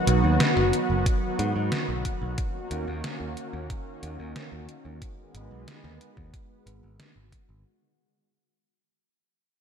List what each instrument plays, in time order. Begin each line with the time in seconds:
Already playing: analog synth pad D#3 F#3 B3 F#4
0.07 picked electric bass B1, closed hi-hat
0.24 picked electric bass D#2
0.40 snare, closed hi-hat
0.57 picked electric bass F#1, snare
0.73 closed hi-hat
0.90 picked electric bass F#1
1.06 kick, closed hi-hat
1.39 picked electric bass G#2, closed hi-hat
1.56 picked electric bass G#2
1.72 snare, closed hi-hat
1.89 picked electric bass B1
2.05 kick, closed hi-hat
2.22 picked electric bass B1
2.38 analog synth pad D#3 A#3 C#4, kick, closed hi-hat
2.71 picked electric bass D#2, closed hi-hat
2.88 picked electric bass D#2
3.04 snare, closed hi-hat
3.20 picked electric bass D#2
3.37 closed hi-hat
3.53 picked electric bass D#2
3.70 kick, closed hi-hat
4.03 picked electric bass D#2, closed hi-hat
4.19 picked electric bass D#2
4.36 snare, closed hi-hat
4.52 picked electric bass D#2
4.69 closed hi-hat
4.85 picked electric bass D#2
5.02 analog synth pad G#3 B3, kick, closed hi-hat
5.35 picked electric bass G#1, closed hi-hat
5.51 picked electric bass B1
5.68 snare, closed hi-hat
5.84 picked electric bass D#2, snare
6.01 closed hi-hat
6.17 picked electric bass D#2, kick
6.34 kick, closed hi-hat
6.66 picked electric bass G#1, closed hi-hat
6.83 picked electric bass G#1
7.00 snare, closed hi-hat
7.16 picked electric bass G#1
7.32 kick, closed hi-hat
7.49 picked electric bass G#1